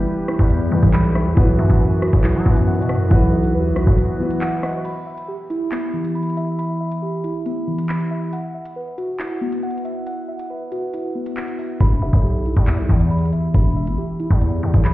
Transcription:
Already playing: E3 G3 B3 G4 B4 E5 B5
0.07 G4
0.28 E4, cross-stick, closed hi-hat
0.39 E2, kick
0.50 B3, closed hi-hat
0.69 E2 E3 G3 B3
0.73 G4 B4
0.83 B1, kick, closed hi-hat
0.94 B5, clap
1.04 closed hi-hat
1.15 E5, cross-stick
1.26 E2
1.34 B1 E3 F#3 B3 F#4 F#5, kick, closed hi-hat
1.38 F#4 B4
1.59 F#2 E5
1.70 F#2, kick, closed hi-hat
1.81 B4
2.02 F#4, cross-stick, closed hi-hat
2.13 B1, kick
2.24 E4, clap, closed hi-hat
2.35 F#3
2.43 F#2 E3 F#3 B3, kick
2.47 F#4 B4
2.57 closed hi-hat
2.67 F#5, closed hi-hat
2.75 B2, closed hi-hat
2.82 closed hi-hat
2.89 E5, cross-stick, closed hi-hat
2.95 F#2
3.08 B1 E3 F#3 B3 F#5, kick, closed hi-hat
3.12 F#4 B4
3.33 E5
3.44 closed hi-hat
3.54 D#2 B4
3.71 B1
3.76 F#4, cross-stick, closed hi-hat
3.87 B1, kick
3.98 E4, closed hi-hat
4.17 E3 F#3 B3
4.21 F#4 B4
4.31 closed hi-hat
4.41 E5 F#5, clap
4.52 closed hi-hat
4.63 D#5 E5, cross-stick, open hi-hat
4.85 B5, closed hi-hat, crash
5.07 E5
5.18 closed hi-hat
5.28 G4
5.50 E4, closed hi-hat
5.72 B3, clap, closed hi-hat
5.93 E3
6.04 closed hi-hat
6.15 B5, closed hi-hat
6.23 closed hi-hat
6.30 closed hi-hat
6.37 E5, closed hi-hat
6.59 B5, closed hi-hat
6.81 E5
6.92 closed hi-hat
7.02 G4
7.24 E4, closed hi-hat
7.46 B3, closed hi-hat
7.67 E3
7.78 closed hi-hat
7.89 B5, clap
8.00 closed hi-hat
8.11 E5
8.33 F#5, closed hi-hat
8.54 E5
8.65 closed hi-hat
8.76 B4
8.98 F#4, closed hi-hat
9.20 E4, clap, closed hi-hat
9.41 B3
9.52 closed hi-hat
9.63 F#5, closed hi-hat
9.70 closed hi-hat
9.78 closed hi-hat
9.85 E5, closed hi-hat
10.07 F#5, closed hi-hat
10.28 E5
10.39 closed hi-hat
10.50 B4
10.72 F#4, closed hi-hat
10.94 E4, closed hi-hat
11.15 B3
11.26 closed hi-hat
11.37 F#5, clap
11.48 closed hi-hat
11.59 E5, open hi-hat
11.81 E1 B5, kick, closed hi-hat
12.02 E1 E5
12.13 B1, kick, closed hi-hat
12.24 G4
12.46 E4, closed hi-hat
12.57 E2, kick
12.67 B3, clap, closed hi-hat
12.78 B1
12.89 E2 E3, kick
13.00 closed hi-hat
13.11 B5, closed hi-hat
13.18 closed hi-hat
13.25 closed hi-hat
13.33 E5, closed hi-hat
13.54 E1 B5, kick, closed hi-hat
13.76 E5
13.87 G1, closed hi-hat
13.98 G4
14.20 E4, closed hi-hat
14.30 E2, kick
14.41 B3, closed hi-hat
14.63 E2 E3
14.74 B1, kick, closed hi-hat
14.85 B5, clap

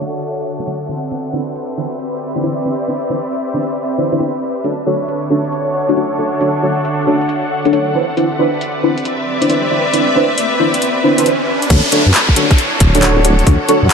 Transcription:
Already playing: D3 D4 F#4 A4 C#5 E5 F#5
0.01 D4 F#4 A4 C#5
0.15 closed hi-hat
0.23 closed hi-hat
0.59 D4 F#4 A4 C#5, closed hi-hat
0.67 D4 F#4 A4 C#5, closed hi-hat
0.89 C4 D4 E4 G4 B4 C5 D5 E5
1.11 D4 E4 B4 C5, closed hi-hat
1.30 D4 E4 B4 C5
1.55 closed hi-hat
1.77 D4 E4 B4 C5
1.92 E5, closed hi-hat
1.99 closed hi-hat
2.06 D5
2.36 D4 E4 B4 C5, closed hi-hat
2.44 D4 E4 B4 C5, closed hi-hat
2.66 D4 E4 B4 C5
2.88 D4 E4 B4 C5, closed hi-hat
3.10 D4 E4 B4 C5
3.32 closed hi-hat
3.54 D4 E4 B4 C5
3.68 closed hi-hat
3.76 closed hi-hat
3.98 D4 E4 B4 C5
4.12 D4 E4 B4 C5, closed hi-hat
4.20 D4 E4, closed hi-hat
4.64 D3 D4 F#4 A4 C#5 E5, closed hi-hat
4.84 D4 F#4 A4 C#5
5.00 A4
5.08 closed hi-hat
5.30 D4 F#4 A4 C#5
5.45 closed hi-hat
5.52 closed hi-hat
5.68 F#5
5.89 D4 F#4 A4 C#5, closed hi-hat
5.97 D4 F#4 A4 C#5, closed hi-hat
6.19 D4 F#4 A4 C#5
6.41 D4 F#4 A4 C#5, closed hi-hat
6.63 D4 F#4 A4 C#5
6.85 closed hi-hat
7.07 D4 F#4 A4 C#5
7.21 closed hi-hat
7.29 closed hi-hat
7.65 D4 F#4 A4 C#5, closed hi-hat
7.73 D4 F#4 A4 C#5, closed hi-hat
7.95 C4 D4 E4 G4 B4 C5 D5 E5
8.17 D4 E4 B4 C5, closed hi-hat, riser
8.36 D4 E4 B4 C5
8.54 D5
8.61 closed hi-hat
8.83 D4 E4 B4 C5
8.98 closed hi-hat
9.05 E5, closed hi-hat
9.42 D4 E4 B4 C5, closed hi-hat
9.49 D4 E4 B4 C5, closed hi-hat
9.71 D4 E4 B4 C5
9.93 D4 E4 B4 C5, closed hi-hat
10.16 D4 E4 B4 C5
10.38 closed hi-hat
10.60 D4 E4 B4 C5
10.74 closed hi-hat
10.82 closed hi-hat
11.04 D4 E4 B4 C5
11.18 D4 E4 B4 C5, closed hi-hat
11.26 D4 E4 B4 C5, closed hi-hat
11.62 closed hi-hat
11.70 D2 D4 E4 F#4 A4 C#5, kick, closed hi-hat, crash, downlifter
11.92 D4 F#4 A4 C#5, closed hi-hat
12.06 F#2
12.11 A4, clap, closed hi-hat
12.29 kick
12.36 D4 F#4 A4 C#5, closed hi-hat
12.51 C#5, kick, cross-stick, closed hi-hat
12.58 closed hi-hat
12.80 D1, kick, closed hi-hat
12.95 D4 F#4 A4 C#5, closed hi-hat
13.02 D4 F#4 A4 C#5, clap, closed hi-hat
13.21 D4 F#4 A4 C#5 F#5, cross-stick, closed hi-hat
13.39 closed hi-hat
13.47 D2 D4 F#4 A4 C#5, kick, closed hi-hat
13.68 D4 F#4 A4 C#5, closed hi-hat
13.83 F#2

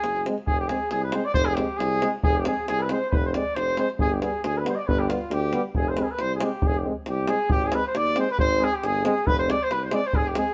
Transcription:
Already playing: G#4
0.03 F#1, davul high
0.17 davul high
0.26 G#3 C4, davul high
0.38 davul high
0.47 F1 G#4, davul low
0.60 G4
0.68 G#3 C4 G#4, davul high
0.91 C2 G#4, davul high
1.03 B4
1.12 G#3 C4 C5, davul high
1.25 D5
1.34 F1 C5, davul low
1.45 G#4
1.54 G#3 C4 G4, davul high
1.77 C2 G#4, davul high
2.01 G#3 C4, davul high
2.23 F1 G#4, davul low
2.36 G4
2.45 G#3 C4 G#4, davul high
2.67 C2 G#4, davul high
2.80 B4
2.89 G#3 C4 C5, davul high
3.08 F1 B4 C5
3.13 B4, davul low
3.23 C5, davul high
3.33 G#3 C4 D5, davul high
3.55 F1 C5, davul high
3.68 davul high
3.77 G#3 C4 C5, davul high
3.90 davul high
3.98 G1 G#4, davul low
4.12 G4
4.20 G3 B3 G#4, davul high
4.43 D2 G#4, davul high
4.57 B4
4.64 G3 B3 C5, davul high
4.69 C5
4.75 D5 D#5
4.79 D5
4.87 G1 B4, davul low
4.99 G4
5.10 G3 B3 F4, davul high
5.30 D2 G4, davul high
5.35 G4
5.53 G3 B3, davul high
5.75 F1 G#4, davul low
5.89 C5
5.96 G#3 C4 B4, davul high
6.03 G#4
6.07 G#4 B4
6.14 B4
6.19 C2 C5, davul high
6.24 C5
6.35 G#4
6.40 G#3 C4, davul high
6.44 G4
6.62 F1 G#4, davul low
6.67 G#4
6.74 G4, davul high
6.78 G4
6.84 G#3 C4
7.06 C2 G4, davul high
7.27 G#3 C4 G#4, davul high
7.50 G#1 G4, davul low
7.62 G#4, davul high
7.67 G#4
7.72 G#3 C4 B4, davul high
7.85 C5
7.95 D#2 D5, davul high
8.07 davul high
8.16 G#3 C4 C5, davul high
8.30 B4, davul high
8.38 G#1 C5, davul low
8.51 davul high
8.60 G#3 C4 G#4
8.64 G#4
8.72 G4
8.82 G1 G#4, davul high
8.95 davul high
9.04 G#3 C4 G#4, davul high
9.18 davul high
9.26 F1 B4, davul low
9.38 C5, davul high
9.47 G#3 C4 D5, davul high
9.61 C5
9.70 C2 B4, davul high
9.81 C5, davul high
9.85 C5
9.91 G#3 C4 D5, davul high
10.04 C5, davul high
10.13 F1 G#4, davul low
10.26 G4, davul high
10.35 G#3 C4 G#4, davul high
10.48 davul high

